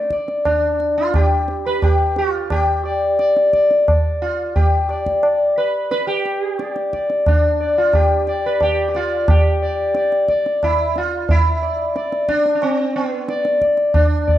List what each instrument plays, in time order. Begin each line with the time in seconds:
0.10 sitar D5, tabla ke
0.28 tabla te
0.45 sitar D4, tabla na, tabla ge
0.80 tabla te
0.98 sitar F4
1.14 sitar G4, tabla na, tabla ge
1.48 tabla te
1.66 sitar B4
1.82 sitar G4, tabla na, tabla ge
2.16 sitar F4, tabla te
2.50 sitar G4, tabla na, tabla ge
2.85 sitar D5
3.19 sitar D5, tabla te
3.37 tabla te
3.53 sitar D5, tabla ke
3.71 tabla te
3.88 sitar D5, tabla na, tabla ge
4.22 sitar F4
4.56 sitar G4, tabla tin, tabla ge
4.89 sitar D5, tabla na
5.06 tabla ke
5.23 sitar D5, tabla na
5.58 sitar B4
5.91 sitar B4, tabla te
6.07 sitar G4
6.25 tabla te
6.59 sitar D5, tabla te
6.76 tabla te
6.93 sitar D5, tabla ke
7.10 tabla te
7.26 sitar D4, tabla na, tabla ge
7.60 sitar D5
7.78 sitar F4
7.93 sitar G4, tabla na, tabla ge
8.27 sitar D5, tabla te
8.46 sitar B4
8.61 sitar G4 D5, tabla na, tabla ge
8.88 sitar G4
8.95 sitar F4 D5, tabla te
9.28 sitar G4, tabla na, tabla ge
9.62 sitar D5
9.95 sitar D5, tabla te
10.12 tabla te
10.28 sitar D5, tabla ke
10.46 tabla te
10.63 sitar E4, tabla na, tabla ge
10.96 sitar F4, tabla te
11.29 sitar E4, tabla tin, tabla ge
11.62 sitar D5
11.96 sitar D5, tabla te
12.12 tabla te
12.28 sitar D4, tabla ke
12.46 tabla te
12.55 sitar D4
12.62 sitar C4, tabla na
12.96 sitar B3
13.28 sitar D5, tabla te
13.45 tabla te
13.62 sitar D5, tabla ke
13.77 tabla te
13.94 sitar D4, tabla na, tabla ge
14.27 sitar D5, tabla ge